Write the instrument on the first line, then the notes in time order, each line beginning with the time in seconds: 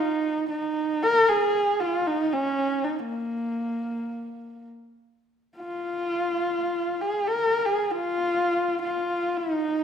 horsehead fiddle
0.00 D#4
0.50 D#4
1.03 A#4
1.28 G#4
1.80 F4
2.07 D#4
2.33 C#4
2.84 D#4
2.99 A#3
5.57 F4
7.01 G#4
7.27 A#4
7.65 G#4
7.91 F4
8.82 F4
9.37 D#4